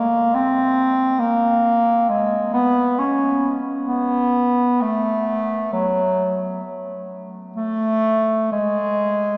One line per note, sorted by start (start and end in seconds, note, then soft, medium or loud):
0.00 0.36 A#3 medium
0.35 1.21 C4 medium
1.20 2.10 A#3 medium
2.09 2.53 G#3 medium
2.53 3.00 B3 medium
2.99 3.62 C#4 medium
3.87 4.83 B3 medium
4.81 5.72 A3 medium
5.73 6.62 F#3 medium
7.56 8.48 A3 medium
8.52 9.37 G#3 medium